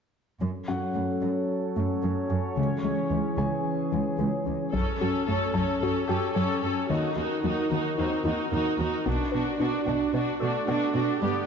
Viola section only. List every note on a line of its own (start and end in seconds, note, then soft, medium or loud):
4.73 4.99 C#4 soft
4.73 4.99 A4 soft
5.00 5.26 C#4 soft
5.00 5.26 A4 soft
5.27 5.53 C#4 soft
5.27 5.52 A4 soft
5.54 5.81 C#4 soft
5.54 5.81 A4 soft
5.82 6.07 C#4 soft
5.82 6.07 A4 soft
6.08 6.35 C#4 soft
6.08 6.34 A4 soft
6.36 6.62 C#4 soft
6.36 6.62 A4 soft
6.63 6.90 C#4 soft
6.63 6.90 A4 soft
6.90 7.16 D#4 soft
6.90 7.16 F#4 soft
7.17 7.42 D#4 soft
7.17 7.43 F#4 soft
7.44 7.70 D#4 soft
7.44 7.70 F#4 soft
7.71 7.97 D#4 soft
7.71 7.97 F#4 soft
7.98 8.24 D#4 soft
7.98 8.25 F#4 soft
8.25 8.51 D#4 soft
8.25 8.51 F#4 soft
8.52 8.79 D#4 soft
8.52 8.79 F#4 soft
8.80 9.06 D#4 soft
8.80 9.06 F#4 soft
9.07 9.33 D4 soft
9.07 9.33 F#4 soft
9.34 9.59 D4 soft
9.34 9.59 F#4 soft
9.60 9.86 D4 soft
9.60 9.86 F#4 soft
9.87 10.13 D4 soft
9.87 10.13 F#4 soft
10.14 10.40 D4 soft
10.14 10.40 F#4 soft
10.41 10.67 D4 soft
10.41 10.67 F#4 soft
10.68 10.93 D4 soft
10.68 10.94 F#4 soft
10.95 11.21 D4 soft
10.95 11.21 F#4 soft
11.21 11.46 B3 soft
11.21 11.46 G4 soft